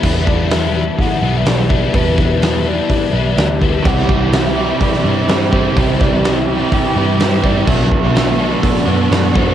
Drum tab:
CC |x---------------|----------------|x---------------|----------------|
HH |----o---o---o---|o---o---o---o---|----o---o---o---|o---o---o---o---|
SD |----o-------o---|--o-o-------o---|----o----o--o---|--o-o-------o---|
BD |o-o-----o-----o-|o-o-----o-----o-|o-o-----o-----o-|o-o-----o-----o-|

CC |x---------------|
HH |----o---o---o---|
SD |----o----o--o---|
BD |o-o-----o-----o-|